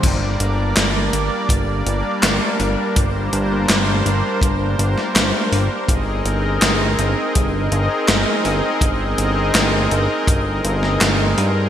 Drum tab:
CC |x---------------|----------------|----------------|----------------|
HH |x-x-x-x-x-x-x-o-|x-x-x-x-x-x-x-o-|x-x-x-x-x-x-x-o-|x-x-x-x-x-x-x-o-|
CP |----x-------x---|----x-------x---|----x-------x---|----x-------x---|
SD |----o-------o---|----o------oo---|----o-------o---|----o------oo---|
BD |o-------o-------|o-------o-------|o-------o-------|o-------o-------|